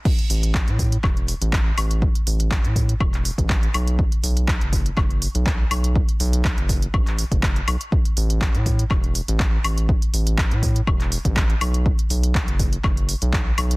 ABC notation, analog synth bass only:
X:1
M:4/4
L:1/16
Q:"Swing 16ths" 1/4=122
K:Bphr
V:1 name="Analog synth bass" clef=bass
z2 A,,,3 A,,2 z E,,,2 z A,,,2 z A,,,2 | z2 A,,,3 A,,2 z E,,,2 z A,,,2 z B,,,2 | z2 B,,,3 F,,,2 z F,,,2 z B,,,2 z B,,,2 | z2 B,,,3 F,,,2 z A,,,2 z F,,,2 z B,,, z |
z2 A,,,3 A,,2 z E,,,2 z A,,,2 z A,,,2 | z2 A,,,3 A,,2 z E,,,2 z A,,,2 z B,,,2 | z2 B,,,3 F,,,2 z F,,,2 z B,,,2 z B,,,2 |]